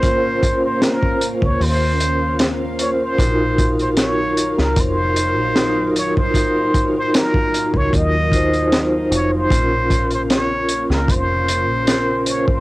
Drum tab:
HH |x-x-x-x-o-x-x-x-|x-xxx-x-x-x-x-x-|x-x-x-x-x-xxx-x-|x-xxx-x-x-x-x-x-|
SD |----o-------o---|----o--o----o---|----o-------o---|----o--o----o---|
BD |o-o--o-o--------|o-o-----o------o|o-o--o-oo-o-----|o-o-----o------o|